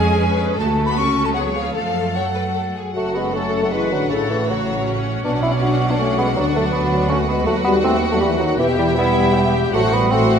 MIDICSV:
0, 0, Header, 1, 9, 480
1, 0, Start_track
1, 0, Key_signature, 3, "minor"
1, 0, Tempo, 381679
1, 742, Time_signature, 3, 2, 24, 8
1, 1711, Tempo, 397614
1, 4111, Tempo, 381194
1, 6031, Tempo, 372439
1, 10831, Tempo, 380952
1, 13090, End_track
2, 0, Start_track
2, 0, Title_t, "Flute"
2, 0, Program_c, 0, 73
2, 0, Note_on_c, 0, 80, 72
2, 430, Note_off_c, 0, 80, 0
2, 736, Note_on_c, 0, 81, 67
2, 1072, Note_off_c, 0, 81, 0
2, 1080, Note_on_c, 0, 83, 58
2, 1139, Note_off_c, 0, 83, 0
2, 1222, Note_on_c, 0, 85, 64
2, 1579, Note_on_c, 0, 81, 54
2, 1598, Note_off_c, 0, 85, 0
2, 1678, Note_off_c, 0, 81, 0
2, 1685, Note_on_c, 0, 78, 58
2, 1759, Note_off_c, 0, 78, 0
2, 1938, Note_on_c, 0, 77, 43
2, 2167, Note_off_c, 0, 77, 0
2, 2174, Note_on_c, 0, 77, 54
2, 2671, Note_on_c, 0, 78, 45
2, 2690, Note_off_c, 0, 77, 0
2, 3399, Note_off_c, 0, 78, 0
2, 13090, End_track
3, 0, Start_track
3, 0, Title_t, "Violin section"
3, 0, Program_c, 1, 48
3, 0, Note_on_c, 1, 80, 65
3, 489, Note_off_c, 1, 80, 0
3, 742, Note_on_c, 1, 81, 58
3, 843, Note_off_c, 1, 81, 0
3, 1089, Note_on_c, 1, 83, 54
3, 1213, Note_off_c, 1, 83, 0
3, 1230, Note_on_c, 1, 85, 57
3, 1558, Note_on_c, 1, 81, 40
3, 1592, Note_off_c, 1, 85, 0
3, 1614, Note_off_c, 1, 81, 0
3, 1690, Note_on_c, 1, 78, 49
3, 1788, Note_off_c, 1, 78, 0
3, 1928, Note_on_c, 1, 77, 35
3, 2176, Note_off_c, 1, 77, 0
3, 2191, Note_on_c, 1, 77, 47
3, 2668, Note_off_c, 1, 77, 0
3, 2669, Note_on_c, 1, 78, 38
3, 3397, Note_off_c, 1, 78, 0
3, 3645, Note_on_c, 1, 66, 42
3, 3646, Note_on_c, 1, 69, 44
3, 5019, Note_off_c, 1, 69, 0
3, 5057, Note_on_c, 1, 73, 42
3, 6463, Note_off_c, 1, 73, 0
3, 6470, Note_off_c, 1, 66, 0
3, 6516, Note_on_c, 1, 66, 49
3, 6518, Note_on_c, 1, 74, 45
3, 7910, Note_off_c, 1, 74, 0
3, 7957, Note_on_c, 1, 71, 50
3, 9338, Note_off_c, 1, 66, 0
3, 9377, Note_on_c, 1, 66, 56
3, 10773, Note_off_c, 1, 66, 0
3, 10777, Note_off_c, 1, 71, 0
3, 10824, Note_on_c, 1, 76, 55
3, 10825, Note_on_c, 1, 64, 56
3, 12218, Note_off_c, 1, 64, 0
3, 12218, Note_off_c, 1, 76, 0
3, 12271, Note_on_c, 1, 72, 53
3, 12281, Note_on_c, 1, 66, 55
3, 12713, Note_off_c, 1, 72, 0
3, 12718, Note_off_c, 1, 66, 0
3, 12741, Note_on_c, 1, 66, 53
3, 12742, Note_on_c, 1, 72, 49
3, 13090, Note_off_c, 1, 66, 0
3, 13090, Note_off_c, 1, 72, 0
3, 13090, End_track
4, 0, Start_track
4, 0, Title_t, "Violin section"
4, 0, Program_c, 2, 48
4, 0, Note_on_c, 2, 68, 59
4, 244, Note_off_c, 2, 68, 0
4, 250, Note_on_c, 2, 71, 61
4, 724, Note_off_c, 2, 71, 0
4, 729, Note_on_c, 2, 69, 50
4, 1695, Note_on_c, 2, 73, 51
4, 1704, Note_off_c, 2, 69, 0
4, 2181, Note_on_c, 2, 69, 38
4, 2184, Note_off_c, 2, 73, 0
4, 2616, Note_off_c, 2, 69, 0
4, 2675, Note_on_c, 2, 73, 47
4, 2771, Note_off_c, 2, 73, 0
4, 2905, Note_on_c, 2, 71, 42
4, 3001, Note_off_c, 2, 71, 0
4, 3130, Note_on_c, 2, 69, 43
4, 3227, Note_off_c, 2, 69, 0
4, 3380, Note_on_c, 2, 68, 39
4, 3626, Note_off_c, 2, 68, 0
4, 3636, Note_on_c, 2, 78, 42
4, 6465, Note_off_c, 2, 78, 0
4, 6518, Note_on_c, 2, 78, 45
4, 9339, Note_off_c, 2, 78, 0
4, 9360, Note_on_c, 2, 78, 52
4, 10765, Note_off_c, 2, 78, 0
4, 10817, Note_on_c, 2, 79, 54
4, 12214, Note_off_c, 2, 79, 0
4, 12247, Note_on_c, 2, 78, 52
4, 12700, Note_off_c, 2, 78, 0
4, 12734, Note_on_c, 2, 78, 53
4, 13090, Note_off_c, 2, 78, 0
4, 13090, End_track
5, 0, Start_track
5, 0, Title_t, "Viola section"
5, 0, Program_c, 3, 48
5, 0, Note_on_c, 3, 61, 61
5, 0, Note_on_c, 3, 68, 60
5, 694, Note_off_c, 3, 68, 0
5, 696, Note_off_c, 3, 61, 0
5, 749, Note_on_c, 3, 66, 52
5, 750, Note_on_c, 3, 57, 53
5, 1664, Note_off_c, 3, 57, 0
5, 1664, Note_off_c, 3, 66, 0
5, 1704, Note_on_c, 3, 68, 41
5, 1707, Note_on_c, 3, 59, 40
5, 2154, Note_off_c, 3, 68, 0
5, 2156, Note_off_c, 3, 59, 0
5, 2180, Note_on_c, 3, 57, 38
5, 2181, Note_on_c, 3, 69, 39
5, 3348, Note_off_c, 3, 57, 0
5, 3348, Note_off_c, 3, 69, 0
5, 3635, Note_on_c, 3, 66, 45
5, 4074, Note_off_c, 3, 66, 0
5, 4108, Note_on_c, 3, 69, 46
5, 4577, Note_off_c, 3, 69, 0
5, 4587, Note_on_c, 3, 71, 44
5, 5057, Note_off_c, 3, 71, 0
5, 5062, Note_on_c, 3, 69, 48
5, 5535, Note_on_c, 3, 66, 45
5, 5537, Note_off_c, 3, 69, 0
5, 6013, Note_off_c, 3, 66, 0
5, 6022, Note_on_c, 3, 61, 46
5, 7920, Note_off_c, 3, 61, 0
5, 7969, Note_on_c, 3, 62, 53
5, 8897, Note_off_c, 3, 62, 0
5, 8902, Note_on_c, 3, 66, 59
5, 10826, Note_off_c, 3, 66, 0
5, 10826, Note_on_c, 3, 67, 64
5, 11302, Note_on_c, 3, 64, 62
5, 11306, Note_off_c, 3, 67, 0
5, 11778, Note_off_c, 3, 64, 0
5, 11784, Note_on_c, 3, 67, 60
5, 12267, Note_on_c, 3, 66, 62
5, 12269, Note_off_c, 3, 67, 0
5, 12727, Note_off_c, 3, 66, 0
5, 12742, Note_on_c, 3, 66, 59
5, 13090, Note_off_c, 3, 66, 0
5, 13090, End_track
6, 0, Start_track
6, 0, Title_t, "Bassoon"
6, 0, Program_c, 4, 70
6, 3644, Note_on_c, 4, 57, 55
6, 3868, Note_on_c, 4, 59, 58
6, 3887, Note_off_c, 4, 57, 0
6, 4106, Note_off_c, 4, 59, 0
6, 4116, Note_on_c, 4, 61, 58
6, 4452, Note_off_c, 4, 61, 0
6, 4460, Note_on_c, 4, 57, 47
6, 4583, Note_on_c, 4, 56, 56
6, 4602, Note_off_c, 4, 57, 0
6, 4824, Note_off_c, 4, 56, 0
6, 4831, Note_on_c, 4, 54, 51
6, 5053, Note_on_c, 4, 49, 54
6, 5072, Note_off_c, 4, 54, 0
6, 5302, Note_off_c, 4, 49, 0
6, 5311, Note_on_c, 4, 52, 58
6, 5557, Note_on_c, 4, 54, 50
6, 5576, Note_off_c, 4, 52, 0
6, 6280, Note_off_c, 4, 54, 0
6, 6512, Note_on_c, 4, 62, 56
6, 6740, Note_off_c, 4, 62, 0
6, 6746, Note_on_c, 4, 64, 66
6, 6857, Note_off_c, 4, 64, 0
6, 6992, Note_on_c, 4, 66, 67
6, 7364, Note_on_c, 4, 62, 52
6, 7383, Note_off_c, 4, 66, 0
6, 7479, Note_on_c, 4, 61, 64
6, 7498, Note_off_c, 4, 62, 0
6, 7714, Note_off_c, 4, 61, 0
6, 7722, Note_on_c, 4, 59, 58
6, 7830, Note_off_c, 4, 59, 0
6, 7953, Note_on_c, 4, 54, 61
6, 8062, Note_off_c, 4, 54, 0
6, 8207, Note_on_c, 4, 57, 60
6, 8312, Note_off_c, 4, 57, 0
6, 8417, Note_on_c, 4, 59, 55
6, 8886, Note_off_c, 4, 59, 0
6, 8894, Note_on_c, 4, 61, 67
6, 9006, Note_off_c, 4, 61, 0
6, 9138, Note_on_c, 4, 59, 63
6, 9362, Note_off_c, 4, 59, 0
6, 9370, Note_on_c, 4, 57, 69
6, 9483, Note_off_c, 4, 57, 0
6, 9606, Note_on_c, 4, 59, 76
6, 9720, Note_off_c, 4, 59, 0
6, 9856, Note_on_c, 4, 60, 75
6, 10021, Note_off_c, 4, 60, 0
6, 10208, Note_on_c, 4, 57, 68
6, 10267, Note_off_c, 4, 57, 0
6, 10324, Note_on_c, 4, 55, 73
6, 10438, Note_off_c, 4, 55, 0
6, 10565, Note_on_c, 4, 54, 69
6, 10814, Note_off_c, 4, 54, 0
6, 10824, Note_on_c, 4, 52, 69
6, 10932, Note_off_c, 4, 52, 0
6, 11068, Note_on_c, 4, 55, 76
6, 11176, Note_off_c, 4, 55, 0
6, 11317, Note_on_c, 4, 59, 80
6, 12022, Note_off_c, 4, 59, 0
6, 12270, Note_on_c, 4, 57, 80
6, 12513, Note_on_c, 4, 59, 82
6, 12532, Note_off_c, 4, 57, 0
6, 12743, Note_on_c, 4, 60, 77
6, 12762, Note_off_c, 4, 59, 0
6, 13090, Note_off_c, 4, 60, 0
6, 13090, End_track
7, 0, Start_track
7, 0, Title_t, "French horn section"
7, 0, Program_c, 5, 60
7, 3617, Note_on_c, 5, 54, 54
7, 3848, Note_off_c, 5, 54, 0
7, 3881, Note_on_c, 5, 56, 51
7, 4110, Note_on_c, 5, 57, 54
7, 4112, Note_off_c, 5, 56, 0
7, 4462, Note_off_c, 5, 57, 0
7, 4478, Note_on_c, 5, 54, 43
7, 4593, Note_off_c, 5, 54, 0
7, 4602, Note_on_c, 5, 52, 53
7, 4829, Note_off_c, 5, 52, 0
7, 4838, Note_on_c, 5, 50, 47
7, 5073, Note_off_c, 5, 50, 0
7, 5079, Note_on_c, 5, 45, 46
7, 5294, Note_on_c, 5, 49, 50
7, 5315, Note_off_c, 5, 45, 0
7, 5538, Note_off_c, 5, 49, 0
7, 5552, Note_on_c, 5, 49, 41
7, 6263, Note_off_c, 5, 49, 0
7, 6507, Note_on_c, 5, 59, 53
7, 6618, Note_off_c, 5, 59, 0
7, 6769, Note_on_c, 5, 61, 54
7, 6875, Note_off_c, 5, 61, 0
7, 7004, Note_on_c, 5, 62, 54
7, 7165, Note_off_c, 5, 62, 0
7, 7340, Note_on_c, 5, 59, 47
7, 7399, Note_off_c, 5, 59, 0
7, 7469, Note_on_c, 5, 57, 57
7, 7713, Note_off_c, 5, 57, 0
7, 7713, Note_on_c, 5, 56, 52
7, 7958, Note_off_c, 5, 56, 0
7, 7970, Note_on_c, 5, 50, 51
7, 8203, Note_off_c, 5, 50, 0
7, 8214, Note_on_c, 5, 54, 53
7, 8404, Note_off_c, 5, 54, 0
7, 8420, Note_on_c, 5, 54, 50
7, 8895, Note_off_c, 5, 54, 0
7, 8899, Note_on_c, 5, 57, 64
7, 9136, Note_on_c, 5, 56, 56
7, 9140, Note_off_c, 5, 57, 0
7, 9371, Note_on_c, 5, 54, 64
7, 9379, Note_off_c, 5, 56, 0
7, 9620, Note_on_c, 5, 55, 65
7, 9622, Note_off_c, 5, 54, 0
7, 9842, Note_on_c, 5, 57, 67
7, 9866, Note_off_c, 5, 55, 0
7, 10010, Note_off_c, 5, 57, 0
7, 10202, Note_on_c, 5, 54, 57
7, 10334, Note_off_c, 5, 54, 0
7, 10335, Note_on_c, 5, 52, 71
7, 10578, Note_off_c, 5, 52, 0
7, 10580, Note_on_c, 5, 51, 60
7, 10805, Note_on_c, 5, 47, 65
7, 10827, Note_off_c, 5, 51, 0
7, 11056, Note_off_c, 5, 47, 0
7, 11060, Note_on_c, 5, 52, 67
7, 11291, Note_on_c, 5, 55, 71
7, 11299, Note_off_c, 5, 52, 0
7, 12024, Note_off_c, 5, 55, 0
7, 12238, Note_on_c, 5, 54, 76
7, 12352, Note_off_c, 5, 54, 0
7, 12501, Note_on_c, 5, 55, 67
7, 12738, Note_off_c, 5, 55, 0
7, 12754, Note_on_c, 5, 57, 73
7, 13090, Note_off_c, 5, 57, 0
7, 13090, End_track
8, 0, Start_track
8, 0, Title_t, "Cello section"
8, 0, Program_c, 6, 48
8, 0, Note_on_c, 6, 56, 61
8, 489, Note_off_c, 6, 56, 0
8, 745, Note_on_c, 6, 57, 55
8, 1077, Note_off_c, 6, 57, 0
8, 1108, Note_on_c, 6, 59, 52
8, 1225, Note_off_c, 6, 59, 0
8, 1236, Note_on_c, 6, 61, 54
8, 1595, Note_off_c, 6, 61, 0
8, 1601, Note_on_c, 6, 57, 47
8, 1717, Note_off_c, 6, 57, 0
8, 1727, Note_on_c, 6, 54, 54
8, 1957, Note_off_c, 6, 54, 0
8, 1966, Note_on_c, 6, 53, 39
8, 2195, Note_off_c, 6, 53, 0
8, 2211, Note_on_c, 6, 53, 48
8, 2678, Note_off_c, 6, 53, 0
8, 2690, Note_on_c, 6, 54, 38
8, 3408, Note_off_c, 6, 54, 0
8, 3653, Note_on_c, 6, 42, 43
8, 5023, Note_off_c, 6, 42, 0
8, 5076, Note_on_c, 6, 45, 45
8, 6524, Note_off_c, 6, 45, 0
8, 6525, Note_on_c, 6, 47, 50
8, 7937, Note_off_c, 6, 47, 0
8, 7957, Note_on_c, 6, 38, 52
8, 9378, Note_on_c, 6, 39, 60
8, 9388, Note_off_c, 6, 38, 0
8, 10824, Note_on_c, 6, 40, 59
8, 10825, Note_off_c, 6, 39, 0
8, 12268, Note_off_c, 6, 40, 0
8, 12280, Note_on_c, 6, 45, 59
8, 13090, Note_off_c, 6, 45, 0
8, 13090, End_track
9, 0, Start_track
9, 0, Title_t, "Double bass section"
9, 0, Program_c, 7, 48
9, 0, Note_on_c, 7, 41, 66
9, 740, Note_on_c, 7, 38, 52
9, 742, Note_off_c, 7, 41, 0
9, 1210, Note_off_c, 7, 38, 0
9, 1219, Note_on_c, 7, 37, 46
9, 2188, Note_on_c, 7, 42, 43
9, 2191, Note_off_c, 7, 37, 0
9, 3400, Note_off_c, 7, 42, 0
9, 3643, Note_on_c, 7, 30, 45
9, 5018, Note_off_c, 7, 30, 0
9, 5074, Note_on_c, 7, 33, 46
9, 6518, Note_on_c, 7, 35, 46
9, 6523, Note_off_c, 7, 33, 0
9, 7933, Note_off_c, 7, 35, 0
9, 7966, Note_on_c, 7, 38, 54
9, 9387, Note_on_c, 7, 39, 55
9, 9393, Note_off_c, 7, 38, 0
9, 10820, Note_on_c, 7, 28, 63
9, 10830, Note_off_c, 7, 39, 0
9, 12266, Note_off_c, 7, 28, 0
9, 12270, Note_on_c, 7, 33, 66
9, 13090, Note_off_c, 7, 33, 0
9, 13090, End_track
0, 0, End_of_file